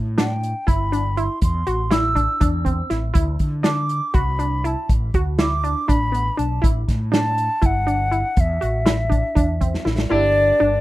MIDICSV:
0, 0, Header, 1, 6, 480
1, 0, Start_track
1, 0, Tempo, 496278
1, 1374, Time_signature, 7, 3, 24, 8
1, 10453, End_track
2, 0, Start_track
2, 0, Title_t, "Flute"
2, 0, Program_c, 0, 73
2, 184, Note_on_c, 0, 79, 67
2, 656, Note_on_c, 0, 83, 70
2, 670, Note_off_c, 0, 79, 0
2, 1131, Note_on_c, 0, 84, 76
2, 1146, Note_off_c, 0, 83, 0
2, 1373, Note_off_c, 0, 84, 0
2, 1387, Note_on_c, 0, 84, 79
2, 1860, Note_on_c, 0, 88, 84
2, 1875, Note_off_c, 0, 84, 0
2, 2397, Note_off_c, 0, 88, 0
2, 3528, Note_on_c, 0, 86, 81
2, 4009, Note_on_c, 0, 83, 81
2, 4023, Note_off_c, 0, 86, 0
2, 4510, Note_on_c, 0, 81, 67
2, 4525, Note_off_c, 0, 83, 0
2, 4743, Note_off_c, 0, 81, 0
2, 5220, Note_on_c, 0, 86, 87
2, 5689, Note_on_c, 0, 83, 80
2, 5703, Note_off_c, 0, 86, 0
2, 6170, Note_on_c, 0, 81, 67
2, 6184, Note_off_c, 0, 83, 0
2, 6413, Note_off_c, 0, 81, 0
2, 6909, Note_on_c, 0, 81, 86
2, 7408, Note_on_c, 0, 78, 81
2, 7423, Note_off_c, 0, 81, 0
2, 8128, Note_on_c, 0, 76, 71
2, 8143, Note_off_c, 0, 78, 0
2, 9552, Note_off_c, 0, 76, 0
2, 9768, Note_on_c, 0, 74, 111
2, 10453, Note_off_c, 0, 74, 0
2, 10453, End_track
3, 0, Start_track
3, 0, Title_t, "Synth arpeggio sound"
3, 0, Program_c, 1, 84
3, 171, Note_on_c, 1, 62, 77
3, 558, Note_off_c, 1, 62, 0
3, 646, Note_on_c, 1, 64, 76
3, 842, Note_off_c, 1, 64, 0
3, 893, Note_on_c, 1, 62, 67
3, 1086, Note_off_c, 1, 62, 0
3, 1135, Note_on_c, 1, 64, 69
3, 1521, Note_off_c, 1, 64, 0
3, 1613, Note_on_c, 1, 66, 71
3, 1806, Note_off_c, 1, 66, 0
3, 1843, Note_on_c, 1, 64, 81
3, 2040, Note_off_c, 1, 64, 0
3, 2083, Note_on_c, 1, 62, 72
3, 2280, Note_off_c, 1, 62, 0
3, 2327, Note_on_c, 1, 62, 73
3, 2523, Note_off_c, 1, 62, 0
3, 2560, Note_on_c, 1, 60, 69
3, 2759, Note_off_c, 1, 60, 0
3, 2805, Note_on_c, 1, 64, 72
3, 3002, Note_off_c, 1, 64, 0
3, 3034, Note_on_c, 1, 64, 83
3, 3428, Note_off_c, 1, 64, 0
3, 3514, Note_on_c, 1, 62, 87
3, 3908, Note_off_c, 1, 62, 0
3, 4002, Note_on_c, 1, 66, 81
3, 4201, Note_off_c, 1, 66, 0
3, 4245, Note_on_c, 1, 62, 63
3, 4442, Note_off_c, 1, 62, 0
3, 4491, Note_on_c, 1, 64, 73
3, 4879, Note_off_c, 1, 64, 0
3, 4977, Note_on_c, 1, 66, 77
3, 5169, Note_off_c, 1, 66, 0
3, 5212, Note_on_c, 1, 64, 79
3, 5406, Note_off_c, 1, 64, 0
3, 5452, Note_on_c, 1, 62, 73
3, 5647, Note_off_c, 1, 62, 0
3, 5689, Note_on_c, 1, 62, 80
3, 5885, Note_off_c, 1, 62, 0
3, 5920, Note_on_c, 1, 59, 59
3, 6120, Note_off_c, 1, 59, 0
3, 6165, Note_on_c, 1, 62, 65
3, 6362, Note_off_c, 1, 62, 0
3, 6399, Note_on_c, 1, 64, 83
3, 6792, Note_off_c, 1, 64, 0
3, 6884, Note_on_c, 1, 62, 83
3, 7275, Note_off_c, 1, 62, 0
3, 7367, Note_on_c, 1, 64, 76
3, 7564, Note_off_c, 1, 64, 0
3, 7609, Note_on_c, 1, 62, 67
3, 7805, Note_off_c, 1, 62, 0
3, 7848, Note_on_c, 1, 64, 64
3, 8237, Note_off_c, 1, 64, 0
3, 8328, Note_on_c, 1, 66, 72
3, 8524, Note_off_c, 1, 66, 0
3, 8566, Note_on_c, 1, 64, 81
3, 8763, Note_off_c, 1, 64, 0
3, 8797, Note_on_c, 1, 62, 66
3, 8998, Note_off_c, 1, 62, 0
3, 9047, Note_on_c, 1, 62, 77
3, 9244, Note_off_c, 1, 62, 0
3, 9293, Note_on_c, 1, 60, 57
3, 9487, Note_off_c, 1, 60, 0
3, 9528, Note_on_c, 1, 64, 68
3, 9724, Note_off_c, 1, 64, 0
3, 9772, Note_on_c, 1, 64, 78
3, 10159, Note_off_c, 1, 64, 0
3, 10253, Note_on_c, 1, 62, 88
3, 10453, Note_off_c, 1, 62, 0
3, 10453, End_track
4, 0, Start_track
4, 0, Title_t, "Hollow-body jazz guitar"
4, 0, Program_c, 2, 26
4, 9763, Note_on_c, 2, 58, 55
4, 9781, Note_on_c, 2, 62, 51
4, 9786, Note_on_c, 2, 67, 64
4, 10453, Note_off_c, 2, 58, 0
4, 10453, Note_off_c, 2, 62, 0
4, 10453, Note_off_c, 2, 67, 0
4, 10453, End_track
5, 0, Start_track
5, 0, Title_t, "Fretless electric bass"
5, 0, Program_c, 3, 35
5, 0, Note_on_c, 3, 45, 86
5, 508, Note_off_c, 3, 45, 0
5, 657, Note_on_c, 3, 31, 79
5, 1227, Note_off_c, 3, 31, 0
5, 1376, Note_on_c, 3, 40, 97
5, 1566, Note_off_c, 3, 40, 0
5, 1615, Note_on_c, 3, 33, 82
5, 2186, Note_off_c, 3, 33, 0
5, 2333, Note_on_c, 3, 40, 78
5, 2715, Note_off_c, 3, 40, 0
5, 2810, Note_on_c, 3, 33, 75
5, 3002, Note_off_c, 3, 33, 0
5, 3052, Note_on_c, 3, 38, 90
5, 3244, Note_off_c, 3, 38, 0
5, 3293, Note_on_c, 3, 50, 86
5, 3864, Note_off_c, 3, 50, 0
5, 4009, Note_on_c, 3, 36, 79
5, 4583, Note_off_c, 3, 36, 0
5, 4732, Note_on_c, 3, 33, 89
5, 4924, Note_off_c, 3, 33, 0
5, 4975, Note_on_c, 3, 38, 71
5, 5546, Note_off_c, 3, 38, 0
5, 5698, Note_on_c, 3, 33, 86
5, 6078, Note_off_c, 3, 33, 0
5, 6178, Note_on_c, 3, 35, 72
5, 6367, Note_off_c, 3, 35, 0
5, 6419, Note_on_c, 3, 33, 86
5, 6608, Note_off_c, 3, 33, 0
5, 6660, Note_on_c, 3, 45, 79
5, 7230, Note_off_c, 3, 45, 0
5, 7377, Note_on_c, 3, 31, 81
5, 7948, Note_off_c, 3, 31, 0
5, 8100, Note_on_c, 3, 40, 91
5, 8289, Note_off_c, 3, 40, 0
5, 8344, Note_on_c, 3, 33, 79
5, 8912, Note_off_c, 3, 33, 0
5, 9057, Note_on_c, 3, 40, 76
5, 9437, Note_off_c, 3, 40, 0
5, 9531, Note_on_c, 3, 33, 72
5, 9723, Note_off_c, 3, 33, 0
5, 9778, Note_on_c, 3, 31, 101
5, 10157, Note_off_c, 3, 31, 0
5, 10258, Note_on_c, 3, 31, 79
5, 10453, Note_off_c, 3, 31, 0
5, 10453, End_track
6, 0, Start_track
6, 0, Title_t, "Drums"
6, 176, Note_on_c, 9, 38, 87
6, 176, Note_on_c, 9, 42, 71
6, 273, Note_off_c, 9, 38, 0
6, 273, Note_off_c, 9, 42, 0
6, 420, Note_on_c, 9, 42, 42
6, 517, Note_off_c, 9, 42, 0
6, 657, Note_on_c, 9, 36, 92
6, 659, Note_on_c, 9, 42, 66
6, 754, Note_off_c, 9, 36, 0
6, 755, Note_off_c, 9, 42, 0
6, 901, Note_on_c, 9, 42, 53
6, 998, Note_off_c, 9, 42, 0
6, 1136, Note_on_c, 9, 42, 44
6, 1233, Note_off_c, 9, 42, 0
6, 1369, Note_on_c, 9, 42, 77
6, 1374, Note_on_c, 9, 36, 86
6, 1466, Note_off_c, 9, 42, 0
6, 1471, Note_off_c, 9, 36, 0
6, 1613, Note_on_c, 9, 42, 57
6, 1710, Note_off_c, 9, 42, 0
6, 1851, Note_on_c, 9, 38, 91
6, 1851, Note_on_c, 9, 42, 75
6, 1948, Note_off_c, 9, 38, 0
6, 1948, Note_off_c, 9, 42, 0
6, 2093, Note_on_c, 9, 36, 58
6, 2094, Note_on_c, 9, 42, 51
6, 2189, Note_off_c, 9, 36, 0
6, 2191, Note_off_c, 9, 42, 0
6, 2330, Note_on_c, 9, 42, 78
6, 2333, Note_on_c, 9, 36, 93
6, 2427, Note_off_c, 9, 42, 0
6, 2430, Note_off_c, 9, 36, 0
6, 2573, Note_on_c, 9, 42, 53
6, 2574, Note_on_c, 9, 36, 60
6, 2670, Note_off_c, 9, 36, 0
6, 2670, Note_off_c, 9, 42, 0
6, 2810, Note_on_c, 9, 38, 28
6, 2810, Note_on_c, 9, 42, 52
6, 2907, Note_off_c, 9, 38, 0
6, 2907, Note_off_c, 9, 42, 0
6, 3046, Note_on_c, 9, 42, 74
6, 3049, Note_on_c, 9, 36, 89
6, 3142, Note_off_c, 9, 42, 0
6, 3146, Note_off_c, 9, 36, 0
6, 3282, Note_on_c, 9, 42, 47
6, 3289, Note_on_c, 9, 36, 65
6, 3379, Note_off_c, 9, 42, 0
6, 3386, Note_off_c, 9, 36, 0
6, 3522, Note_on_c, 9, 38, 91
6, 3522, Note_on_c, 9, 42, 64
6, 3619, Note_off_c, 9, 38, 0
6, 3619, Note_off_c, 9, 42, 0
6, 3766, Note_on_c, 9, 42, 47
6, 3863, Note_off_c, 9, 42, 0
6, 4004, Note_on_c, 9, 42, 63
6, 4010, Note_on_c, 9, 36, 91
6, 4100, Note_off_c, 9, 42, 0
6, 4106, Note_off_c, 9, 36, 0
6, 4251, Note_on_c, 9, 42, 50
6, 4348, Note_off_c, 9, 42, 0
6, 4497, Note_on_c, 9, 42, 48
6, 4594, Note_off_c, 9, 42, 0
6, 4734, Note_on_c, 9, 36, 88
6, 4736, Note_on_c, 9, 42, 67
6, 4831, Note_off_c, 9, 36, 0
6, 4833, Note_off_c, 9, 42, 0
6, 4972, Note_on_c, 9, 42, 50
6, 4973, Note_on_c, 9, 36, 71
6, 5069, Note_off_c, 9, 42, 0
6, 5070, Note_off_c, 9, 36, 0
6, 5209, Note_on_c, 9, 38, 99
6, 5209, Note_on_c, 9, 42, 77
6, 5306, Note_off_c, 9, 38, 0
6, 5306, Note_off_c, 9, 42, 0
6, 5460, Note_on_c, 9, 42, 48
6, 5556, Note_off_c, 9, 42, 0
6, 5699, Note_on_c, 9, 36, 79
6, 5701, Note_on_c, 9, 42, 73
6, 5795, Note_off_c, 9, 36, 0
6, 5797, Note_off_c, 9, 42, 0
6, 5944, Note_on_c, 9, 42, 53
6, 6040, Note_off_c, 9, 42, 0
6, 6180, Note_on_c, 9, 42, 57
6, 6277, Note_off_c, 9, 42, 0
6, 6420, Note_on_c, 9, 36, 93
6, 6424, Note_on_c, 9, 42, 77
6, 6517, Note_off_c, 9, 36, 0
6, 6521, Note_off_c, 9, 42, 0
6, 6659, Note_on_c, 9, 36, 63
6, 6661, Note_on_c, 9, 38, 31
6, 6661, Note_on_c, 9, 42, 58
6, 6756, Note_off_c, 9, 36, 0
6, 6758, Note_off_c, 9, 38, 0
6, 6758, Note_off_c, 9, 42, 0
6, 6902, Note_on_c, 9, 38, 99
6, 6902, Note_on_c, 9, 42, 72
6, 6998, Note_off_c, 9, 38, 0
6, 6998, Note_off_c, 9, 42, 0
6, 7138, Note_on_c, 9, 42, 50
6, 7234, Note_off_c, 9, 42, 0
6, 7373, Note_on_c, 9, 42, 69
6, 7377, Note_on_c, 9, 36, 89
6, 7470, Note_off_c, 9, 42, 0
6, 7473, Note_off_c, 9, 36, 0
6, 7620, Note_on_c, 9, 42, 45
6, 7717, Note_off_c, 9, 42, 0
6, 7857, Note_on_c, 9, 42, 45
6, 7954, Note_off_c, 9, 42, 0
6, 8092, Note_on_c, 9, 42, 67
6, 8097, Note_on_c, 9, 36, 92
6, 8189, Note_off_c, 9, 42, 0
6, 8194, Note_off_c, 9, 36, 0
6, 8339, Note_on_c, 9, 42, 50
6, 8435, Note_off_c, 9, 42, 0
6, 8573, Note_on_c, 9, 38, 101
6, 8573, Note_on_c, 9, 42, 69
6, 8670, Note_off_c, 9, 38, 0
6, 8670, Note_off_c, 9, 42, 0
6, 8819, Note_on_c, 9, 36, 61
6, 8821, Note_on_c, 9, 42, 45
6, 8915, Note_off_c, 9, 36, 0
6, 8918, Note_off_c, 9, 42, 0
6, 9058, Note_on_c, 9, 36, 93
6, 9061, Note_on_c, 9, 42, 68
6, 9155, Note_off_c, 9, 36, 0
6, 9157, Note_off_c, 9, 42, 0
6, 9298, Note_on_c, 9, 36, 64
6, 9299, Note_on_c, 9, 42, 54
6, 9395, Note_off_c, 9, 36, 0
6, 9396, Note_off_c, 9, 42, 0
6, 9425, Note_on_c, 9, 38, 47
6, 9522, Note_off_c, 9, 38, 0
6, 9541, Note_on_c, 9, 38, 53
6, 9638, Note_off_c, 9, 38, 0
6, 9657, Note_on_c, 9, 38, 74
6, 9753, Note_off_c, 9, 38, 0
6, 10453, End_track
0, 0, End_of_file